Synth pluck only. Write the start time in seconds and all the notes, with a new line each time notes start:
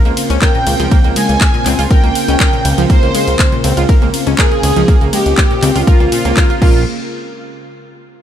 0.05 A#3
0.30 C#4
0.42 A#4
0.55 A#2
0.80 F3
0.91 A#3
1.04 A#3
1.16 G#3
1.54 A#2
1.66 C4
1.79 F4
1.91 A#4
2.04 A#3
2.28 C#4
2.40 A#4
2.53 A#2
2.78 F3
2.90 A#3
3.03 A#3
3.15 G#3
3.52 A#2
3.64 C4
3.77 F4
3.89 A#4
4.02 A#3
4.27 C#4
4.39 A#4
4.52 A#2
4.76 F3
4.88 A#3
5.01 A#3
5.13 G#3
5.51 A#2
5.63 C4
5.76 F4
5.87 A#4
6.00 A#3
6.12 A#2
6.25 A#3
6.37 A#4
6.50 F4
6.62 A#3